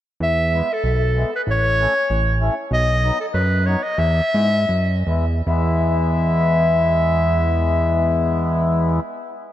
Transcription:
0.20 0.62 E2 medium
0.20 0.75 E5 loud
0.53 0.68 G#3 medium
0.53 0.68 B3 soft
0.53 0.69 E4 medium
0.73 1.34 A4 medium
0.84 1.25 B1 medium
1.16 1.30 G#3 medium
1.16 1.31 B3 soft
1.16 1.31 E4 medium
1.36 1.42 B4 medium
1.47 1.87 A1 medium
1.47 2.39 C#5 medium
1.79 1.93 A3 medium
1.79 1.93 C#4 soft
1.79 1.93 E4 medium
2.10 2.50 A1 medium
2.40 2.54 A3 medium
2.40 2.54 C#4 medium
2.40 2.55 E4 medium
2.71 3.11 B1 medium
2.71 3.16 D#5 loud
3.04 3.17 F#3 medium
3.04 3.17 B3 medium
3.04 3.17 D#4 medium
3.21 3.27 A4 medium
3.34 3.76 F#2 medium
3.34 3.67 B4 medium
3.66 3.81 F#3 medium
3.66 3.81 B3 medium
3.66 3.81 D#4 medium
3.66 3.85 C#5 medium
3.83 4.00 D#5 medium
3.98 4.21 E2 loud
3.98 5.07 E5 loud
4.34 4.65 G#2 medium
4.34 4.49 G#3 soft
4.34 4.50 B3 soft
4.34 4.50 E4 medium
4.69 5.03 F#2 medium
5.07 5.42 E2 medium
5.07 5.25 G#3 medium
5.07 5.25 B3 medium
5.07 5.25 E4 medium
5.47 8.99 E2 medium
5.47 9.00 G#3 medium
5.47 9.00 B3 medium
5.47 9.00 E4 medium
5.47 9.00 E5 medium

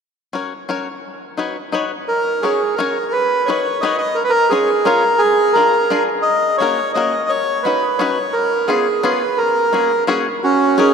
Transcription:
0.33 0.51 C#4 soft
0.33 0.52 F#4 soft
0.33 0.52 A#4 soft
0.33 0.52 C#5 medium
0.69 0.86 C#4 medium
0.69 0.87 F#4 medium
0.69 0.87 A#4 medium
0.69 0.87 C#5 medium
1.37 1.55 D#4 medium
1.37 1.56 F#4 soft
1.37 1.56 B4 soft
1.37 1.56 C#5 medium
1.72 1.90 D#4 medium
1.72 1.91 F#4 medium
1.72 1.91 B4 medium
1.72 1.91 C#5 medium
2.08 2.45 A#4 medium
2.42 2.61 C#4 medium
2.42 2.61 F#4 soft
2.42 2.75 G#4 medium
2.42 2.62 A#4 soft
2.42 2.62 C#5 soft
2.75 2.96 C#4 medium
2.75 2.96 F#4 medium
2.75 3.13 A#4 medium
2.80 2.97 A#4 medium
2.80 2.97 C#5 medium
3.12 3.49 B4 loud
3.46 3.65 D#4 soft
3.46 3.66 F#4 soft
3.46 3.66 B4 soft
3.46 3.83 C#5 medium
3.50 3.66 C#5 medium
3.81 4.00 D#4 medium
3.81 4.00 F#4 medium
3.81 4.01 B4 medium
3.81 4.01 C#5 medium
3.81 3.96 D#5 medium
3.98 4.17 D#5 medium
4.15 4.23 A#4 medium
4.24 4.31 B4 medium
4.30 4.51 A#4 loud
4.50 4.69 C#4 soft
4.50 4.69 F4 soft
4.50 4.86 G#4 medium
4.50 4.69 G#4 medium
4.50 4.69 C#5 medium
4.85 5.03 C#4 medium
4.85 5.03 F4 medium
4.85 5.03 G#4 medium
4.85 5.21 A#4 medium
4.85 5.04 C#5 medium
5.18 5.55 G#4 loud
5.53 5.73 D4 soft
5.53 5.73 F4 soft
5.53 5.74 G#4 soft
5.53 6.03 A#4 medium
5.53 5.74 A#4 soft
5.90 6.08 D4 medium
5.90 6.08 F4 medium
5.90 6.09 G#4 medium
5.90 6.09 A#4 medium
6.22 6.57 D#5 medium
6.58 6.78 A#3 soft
6.58 6.78 C#4 soft
6.58 6.79 F#4 soft
6.58 6.92 C#5 medium
6.62 6.79 A#4 medium
6.94 7.13 A#3 medium
6.94 7.13 C#4 soft
6.94 7.14 F#4 medium
6.94 7.14 A#4 medium
6.94 7.31 D#5 medium
7.29 7.66 C#5 loud
7.63 7.83 C#4 soft
7.63 7.83 D#4 soft
7.63 7.83 F#4 medium
7.63 8.00 B4 medium
7.63 7.84 B4 medium
7.98 8.17 C#4 medium
7.98 8.17 D#4 medium
7.98 8.18 F#4 medium
7.98 8.18 B4 medium
7.98 8.35 C#5 medium
8.33 8.69 A#4 medium
8.67 8.86 B3 medium
8.67 8.86 C#4 medium
8.67 8.86 F4 medium
8.67 9.04 G#4 medium
8.67 8.87 G#4 medium
9.03 9.21 B3 medium
9.03 9.21 C#4 medium
9.03 9.21 F4 medium
9.03 9.21 G#4 medium
9.03 9.39 B4 medium
9.38 10.04 A#4 medium
9.73 9.90 A#3 soft
9.73 9.91 C#4 soft
9.73 9.91 F#4 soft
9.73 9.91 G#4 medium
10.07 10.26 A#3 medium
10.07 10.26 C#4 medium
10.07 10.26 F#4 medium
10.07 10.26 G#4 medium
10.43 10.93 C#4 medium
10.43 10.80 F#4 medium
10.78 10.94 C#4 medium
10.78 10.94 D#4 soft
10.78 10.94 F#4 soft
10.78 10.94 G#4 medium
10.78 10.94 A#4 medium

